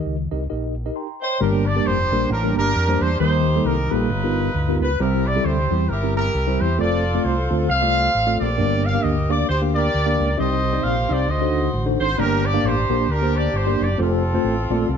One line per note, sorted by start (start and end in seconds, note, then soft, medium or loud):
0.00 0.27 D#3 medium
0.00 0.16 D#4 medium
0.00 0.16 G4 medium
0.00 0.16 A#4 medium
0.00 0.15 D#5 medium
0.06 0.28 C#2 medium
0.31 0.48 C2 medium
0.31 0.43 D#4 medium
0.31 0.43 G4 medium
0.31 0.43 A#4 medium
0.31 0.43 D#5 medium
0.50 0.89 A#1 medium
0.50 0.74 D#4 medium
0.50 0.74 G4 medium
0.50 0.74 A#4 medium
0.50 0.74 D#5 medium
0.86 1.06 D#4 medium
0.86 1.06 G4 medium
0.86 1.06 A#4 medium
0.86 0.95 D#5 medium
0.96 1.21 G5 soft
0.96 1.20 A#5 medium
0.96 1.21 C6 medium
1.22 1.39 C5 medium
1.22 1.65 C#5 medium
1.22 1.40 D#5 medium
1.22 1.65 G5 medium
1.40 1.79 G1 loud
1.40 2.08 G2 medium
1.40 1.64 G3 medium
1.40 1.64 A#3 medium
1.40 2.27 D4 medium
1.40 1.64 D4 medium
1.40 1.84 G4 medium
1.40 1.64 G4 medium
1.40 1.65 A#4 loud
1.40 1.64 A#4 medium
1.67 1.86 D5 loud
1.76 1.96 G3 medium
1.76 1.96 A#3 medium
1.76 1.96 D4 medium
1.76 1.96 G4 medium
1.76 1.96 A#4 medium
1.85 2.08 F1 medium
1.85 2.30 G4 medium
1.85 2.31 C5 loud
2.12 2.28 A#1 loud
2.12 2.29 G3 medium
2.12 2.29 A#3 medium
2.12 2.29 D4 medium
2.12 2.29 G4 medium
2.12 2.29 A#4 medium
2.30 2.53 A1 loud
2.30 2.57 D4 medium
2.30 2.57 G4 medium
2.30 2.55 A#4 loud
2.43 2.70 G3 medium
2.43 2.70 A#3 medium
2.43 2.70 D4 medium
2.43 2.70 G4 medium
2.43 2.70 A#4 medium
2.57 2.73 G1 medium
2.57 3.17 D4 medium
2.57 3.17 G4 medium
2.57 2.99 A#4 loud
2.75 2.98 F2 medium
2.88 3.09 G3 medium
2.88 3.09 A#3 medium
2.88 3.09 D4 medium
2.88 3.09 G4 medium
2.88 3.09 C5 loud
3.01 3.17 E2 medium
3.01 3.19 C5 loud
3.20 3.58 D#2 loud
3.20 3.88 D#3 medium
3.20 3.44 G3 medium
3.20 3.44 A#3 medium
3.20 3.90 D#4 medium
3.20 3.44 D#4 medium
3.20 3.44 G4 medium
3.20 4.06 G4 medium
3.20 3.44 A#4 medium
3.20 3.62 C5 loud
3.56 3.76 G3 medium
3.56 3.76 A#3 medium
3.56 3.76 D#4 medium
3.56 3.76 G4 medium
3.56 3.76 A4 medium
3.65 3.87 C2 loud
3.65 3.91 A#4 loud
3.91 4.08 A#1 loud
3.91 4.08 G3 medium
3.91 4.08 A#3 medium
3.91 4.08 D#4 medium
3.91 4.77 D#4 medium
3.91 4.77 F4 medium
3.91 4.08 G4 medium
3.91 4.08 A4 medium
3.91 4.81 B4 loud
4.10 4.48 G1 loud
4.10 4.77 G2 medium
4.24 4.50 B3 medium
4.24 4.50 D#4 medium
4.24 4.50 F4 medium
4.24 4.50 G4 medium
4.24 4.50 A#4 medium
4.55 4.77 D2 medium
4.69 4.89 B3 medium
4.69 4.89 D#4 medium
4.69 4.89 F4 medium
4.69 4.89 G4 medium
4.69 4.89 A#4 medium
4.80 4.97 C#2 loud
4.80 4.99 B4 medium
5.00 5.38 C2 loud
5.00 5.67 C3 medium
5.00 5.24 G3 medium
5.00 5.24 C4 medium
5.00 5.24 E4 medium
5.00 5.44 E4 medium
5.00 5.24 G4 medium
5.00 5.44 G4 medium
5.00 5.26 A#4 medium
5.00 5.24 C5 medium
5.26 5.45 D5 loud
5.36 5.56 G3 medium
5.36 5.56 C4 medium
5.36 5.56 E4 medium
5.36 5.56 G4 medium
5.36 5.56 A4 medium
5.45 5.67 D2 loud
5.45 5.89 E4 medium
5.45 5.89 G4 medium
5.45 5.90 C5 medium
5.71 5.87 E2 loud
5.71 5.88 G3 medium
5.71 5.88 C4 medium
5.71 5.88 E4 medium
5.71 5.88 G4 medium
5.71 5.88 C5 medium
5.89 6.28 G1 medium
5.89 6.16 E4 medium
5.89 6.16 G4 medium
5.89 6.15 A#4 medium
6.03 6.29 G3 medium
6.03 6.29 C4 medium
6.03 6.29 E4 medium
6.03 6.29 G4 medium
6.03 6.29 A#4 medium
6.16 6.76 E4 medium
6.16 6.76 G4 medium
6.16 6.58 A#4 loud
6.35 6.57 C2 medium
6.47 6.68 G3 medium
6.47 6.68 C4 medium
6.47 6.68 E4 medium
6.47 6.68 G4 medium
6.47 6.68 C5 medium
6.60 6.77 E2 loud
6.60 6.79 C5 loud
6.78 7.18 F1 loud
6.78 7.03 A3 medium
6.78 7.03 C4 medium
6.78 7.03 F4 medium
6.78 7.66 F4 medium
6.78 7.03 A4 medium
6.78 7.66 A4 medium
6.78 7.03 C5 medium
6.78 7.22 D5 medium
7.15 7.35 A3 medium
7.15 7.35 C4 medium
7.15 7.35 F4 medium
7.15 7.35 A4 medium
7.15 7.35 D5 medium
7.24 7.47 C2 medium
7.24 7.51 C5 medium
7.50 7.67 D2 loud
7.50 7.67 A3 medium
7.50 7.67 C4 medium
7.50 7.67 F4 medium
7.50 7.67 A4 medium
7.50 7.67 C5 medium
7.69 8.07 C2 loud
7.69 8.56 A4 medium
7.69 8.55 C5 medium
7.69 8.36 F5 loud
7.82 8.08 A3 medium
7.82 8.08 C4 medium
7.82 8.08 F4 medium
7.82 8.08 A4 medium
7.82 8.08 D5 medium
8.15 8.37 A1 medium
8.27 8.48 A3 medium
8.27 8.48 C4 medium
8.27 8.48 F4 medium
8.27 8.48 A4 medium
8.27 8.48 D5 medium
8.41 8.60 A#1 medium
8.41 9.27 G4 medium
8.41 9.27 A#4 medium
8.41 8.85 D5 loud
8.58 8.97 G1 loud
8.58 9.26 G2 medium
8.58 8.82 A#3 medium
8.58 8.82 D4 medium
8.58 8.82 G4 medium
8.58 8.82 A#4 medium
8.58 8.82 D5 medium
8.86 9.04 F5 loud
8.94 9.14 A#3 medium
8.94 9.15 D4 medium
8.94 9.14 G4 medium
8.94 9.14 A#4 medium
8.94 9.15 F5 loud
9.04 9.42 D2 medium
9.04 9.30 D#5 medium
9.30 9.47 A#3 medium
9.30 9.47 D4 medium
9.30 9.47 G4 medium
9.30 9.47 A#4 medium
9.30 9.49 D5 loud
9.30 9.47 F5 medium
9.49 9.87 D2 loud
9.49 9.74 G4 medium
9.49 9.60 C5 medium
9.62 9.88 A#3 medium
9.62 9.88 D4 medium
9.62 9.88 G4 medium
9.62 9.88 A#4 medium
9.62 9.88 F5 medium
9.75 10.35 G4 medium
9.75 10.35 A#4 medium
9.75 10.35 D5 loud
9.94 10.16 D2 medium
10.06 10.27 A#3 medium
10.06 10.27 D4 medium
10.06 10.27 G4 medium
10.06 10.27 A#4 medium
10.06 10.27 F5 medium
10.20 10.36 C#2 loud
10.37 10.78 C2 loud
10.37 11.05 C3 medium
10.37 10.62 C4 medium
10.37 10.62 D#4 medium
10.37 10.62 G4 medium
10.37 11.25 G4 medium
10.37 10.62 C5 medium
10.37 11.25 C5 medium
10.37 10.62 D#5 medium
10.37 10.84 D#5 loud
10.73 10.94 C4 medium
10.73 10.94 D#4 medium
10.73 10.94 G4 medium
10.73 10.94 C5 medium
10.73 10.94 D5 medium
10.83 11.06 A#1 medium
10.83 11.10 F5 medium
11.09 11.26 C2 loud
11.09 11.26 C4 medium
11.09 11.26 D#4 medium
11.09 11.26 G4 medium
11.09 11.26 C5 medium
11.09 11.29 D5 medium
11.09 11.26 F5 medium
11.28 11.67 D2 loud
11.28 11.95 D3 medium
11.28 12.15 F#4 medium
11.28 11.84 C5 medium
11.28 11.70 D#5 loud
11.41 11.68 D4 medium
11.41 11.68 D#4 medium
11.41 11.68 F#4 medium
11.41 11.68 A4 medium
11.41 11.68 C5 medium
11.73 11.96 A1 loud
11.86 12.07 D4 medium
11.86 12.07 D#4 medium
11.86 12.07 F#4 medium
11.86 12.07 A4 medium
11.86 12.07 C5 medium
12.00 12.16 G#1 medium
12.00 12.18 C5 loud
12.18 12.57 G1 loud
12.18 12.86 G2 medium
12.18 12.42 A#3 medium
12.18 12.42 D4 medium
12.18 13.05 D4 medium
12.18 12.42 G4 medium
12.18 12.64 G4 medium
12.18 12.42 A#4 medium
12.18 12.45 A#4 loud
12.18 12.42 D5 medium
12.46 12.64 D5 loud
12.53 12.74 A#3 medium
12.53 12.74 D4 medium
12.53 12.74 G4 medium
12.53 12.74 A#4 medium
12.53 12.74 F5 medium
12.64 12.86 A1 medium
12.64 13.09 G4 medium
12.64 13.10 C5 loud
12.90 13.06 A#1 loud
12.90 13.07 A#3 medium
12.90 13.07 D4 medium
12.90 13.07 G4 medium
12.90 13.07 A#4 medium
12.90 13.07 C5 loud
13.08 13.46 D2 loud
13.08 13.95 D4 medium
13.08 13.95 G4 medium
13.08 13.36 A#4 loud
13.22 13.48 A#3 medium
13.22 13.48 D4 medium
13.22 13.48 G4 medium
13.22 13.48 A#4 medium
13.22 13.48 C5 medium
13.36 13.54 D5 loud
13.53 13.76 G1 loud
13.53 13.81 C5 medium
13.67 13.87 A#3 medium
13.67 13.87 D4 medium
13.67 13.87 G4 medium
13.67 13.87 A#4 medium
13.67 13.87 D5 medium
13.80 13.96 F#1 medium
13.80 14.00 D5 loud
13.98 14.37 F1 loud
13.98 14.22 A3 medium
13.98 14.22 C4 medium
13.98 14.97 C4 medium
13.98 14.22 F4 medium
13.98 14.97 F4 medium
13.98 14.22 A4 medium
13.98 14.97 A4 medium
13.98 14.22 C5 medium
14.34 14.54 A3 medium
14.34 14.54 C4 medium
14.34 14.54 F4 medium
14.34 14.54 A4 medium
14.34 14.54 C5 loud
14.44 14.66 A1 medium
14.70 14.86 A#1 loud
14.70 14.87 A3 medium
14.70 14.87 C4 medium
14.70 14.87 F4 medium
14.70 14.87 A4 medium
14.70 14.87 D5 loud
14.89 14.97 C2 loud